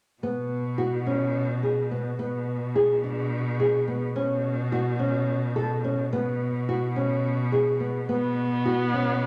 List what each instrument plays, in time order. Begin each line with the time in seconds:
0.22 cello B2, nylon-string guitar B3
0.78 nylon-string guitar F#4
1.06 nylon-string guitar C#4
1.63 nylon-string guitar G#4
1.91 nylon-string guitar B3
2.19 cello B2, nylon-string guitar B3
2.76 nylon-string guitar G#4
3.04 nylon-string guitar D4
3.60 nylon-string guitar G#4
3.88 nylon-string guitar B3
4.16 cello B2, nylon-string guitar C#4
4.72 nylon-string guitar F#4
4.99 nylon-string guitar C#4
5.56 nylon-string guitar A4
5.84 nylon-string guitar C#4
6.12 cello B2, nylon-string guitar B3
6.69 nylon-string guitar F#4
6.96 nylon-string guitar C#4
7.52 nylon-string guitar G#4
7.80 nylon-string guitar B3
8.09 cello B2, viola B3, nylon-string guitar B3
8.65 nylon-string guitar F#4
8.94 nylon-string guitar C#4